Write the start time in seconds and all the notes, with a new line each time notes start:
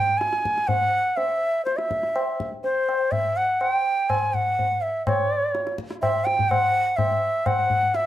Already playing: G5
0.18 G#5, tabla te
0.33 tabla te
0.45 tabla ke
0.58 tabla te
0.67 F#5, tabla tin, tabla ge
1.17 E5, tabla tin
1.65 C5, tabla te
1.77 E5, tabla te
1.91 tabla ke
2.03 tabla te
2.16 tabla na
2.40 tabla ke
2.64 C5, tabla tin
2.89 tabla na
3.12 E5, tabla tin, tabla ge
3.37 F#5
3.61 F#5, tabla na
3.72 G5
4.09 G#5, tabla na, tabla ge
4.34 F#5, tabla ge
4.59 tabla tin, tabla ge
4.82 E5
5.07 C#5, tabla na, tabla ge
5.55 tabla te
5.67 tabla te
5.78 tabla ke
5.91 tabla te
6.02 E5, tabla na, tabla ge
6.25 G5, tabla te
6.39 tabla ge
6.50 F#5, tabla na, tabla ge
6.97 E5, tabla na, tabla ge
7.46 F#5, tabla na, tabla ge
7.70 tabla ge
7.94 E5, tabla te